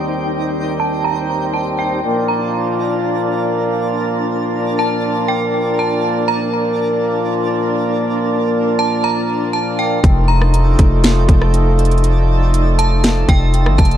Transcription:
<<
  \new Staff \with { instrumentName = "Synth bell" } { \time 4/4 \key bes \major \tempo 4 = 120 r4. a''8 bes''4 a''8 g''8 | r8 bes''8 r2. | r4. a''4 g''4 a''8 | r8 bes''8 r2. |
r4. a''8 bes''4 a''8 g''8 | r8 bes''8 r2. | r4. a''4 g''4 a''8 | }
  \new Staff \with { instrumentName = "Synth texture" } { \time 4/4 \key bes \major << { <ees' g''>1 | a'''1~ | a'''1~ | a'''1~ |
a'''1 | g''1 | a''1 | } \\ { c''1 | <d' bes'>1~ | <d' bes'>1~ | <d' bes'>1~ |
<d' bes'>1 | <ees' a' d''>1~ | <ees' a' d''>1 | } >> }
  \new Staff \with { instrumentName = "Harmonium" } { \clef bass \time 4/4 \key bes \major <ees, ees g c'>1 | <bes, f bes d'>1~ | <bes, f bes d'>1~ | <bes, f bes d'>1~ |
<bes, f bes d'>1 | <f a ees'>1~ | <f a ees'>1 | }
  \new Staff \with { instrumentName = "808-style bass" } { \clef bass \time 4/4 \key bes \major r1 | r1 | r1 | r1 |
r1 | f,,4. f,,4 f,,4.~ | f,,2~ f,,8 f,,8. g,,16 f,,8 | }
  \new DrumStaff \with { instrumentName = "Drums" } \drummode { \time 4/4 r4 r4 r4 r4 | r4 r4 r4 r4 | r4 r4 r4 r4 | r4 r4 r4 r4 |
r4 r4 r4 r4 | <hh bd>8. ss16 hh8 <hh bd>8 <hh sn>8 <hh bd>16 ss16 hh8 hh32 hh32 hh32 hh32 | hh4 hh8 hh8 <hh sn>8 <hh bd>8 hh16 ss16 <hh bd>32 hh32 hh16 | }
>>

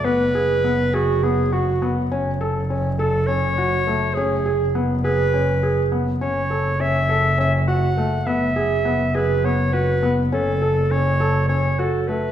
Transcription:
<<
  \new Staff \with { instrumentName = "Clarinet" } { \time 7/8 \key fis \minor \tempo 4 = 102 b'4. fis'8 gis'8 fis'8. r16 | r4. a'8 cis''4. | gis'4 r8 b'4. r8 | cis''4 e''4 e''8 fis''4 |
e''4. b'8 cis''8 b'8. r16 | a'4 cis''4 cis''8 a'8 b'8 | }
  \new Staff \with { instrumentName = "Felt piano" } { \time 7/8 \key fis \minor b8 gis'8 b8 gis'8 b8 fis'8 b8 | cis'8 a'8 cis'8 a'8 cis'8 fis'8 a8 | cis'8 gis'8 b8 gis'8 cis'8 gis'8 b8 | cis'8 a'8 cis'8 a'8 cis'8 fis'8 a8 |
b8 gis'8 b8 gis'8 b8 fis'8 b8 | cis'8 a'8 cis'8 a'8 cis'8 fis'8 a8 | }
  \new Staff \with { instrumentName = "Double bass" } { \clef bass \time 7/8 \key fis \minor fis,,2.~ fis,,8 | fis,,2.~ fis,,8 | fis,,2.~ fis,,8 | fis,,2.~ fis,,8 |
fis,,2.~ fis,,8 | fis,,2.~ fis,,8 | }
>>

